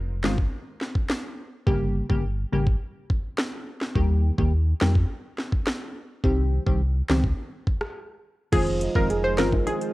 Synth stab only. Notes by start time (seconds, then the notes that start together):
0.24 D#3 G#3 C4 F4
1.67 C#3 G3 A#3 G4
2.09 C#3 G3 A#3 G4
2.52 C#3 G3 A#3 G4
3.95 D#3 G3 A#3 G4
4.38 D#3 G3 A#3 G4
4.81 D#3 G3 A#3 G4
6.24 D#3 G3 C4 G4
6.66 D#3 G3 C4 G4
7.09 D#3 G3 C4 G4
8.52 D#3 G#3 C4 F4
8.95 D#3 G#3 C4 F4
9.38 D#3 G#3 C4 F4